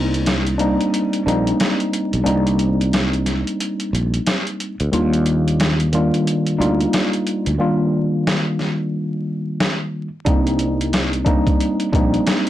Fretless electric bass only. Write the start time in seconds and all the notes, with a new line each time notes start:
Already playing: C2
1.27 A#1
2.14 B1
2.27 C2
3.93 A#1
4.80 D2
4.93 D#2
6.60 D2
7.47 D2
10.26 C2
11.93 A#1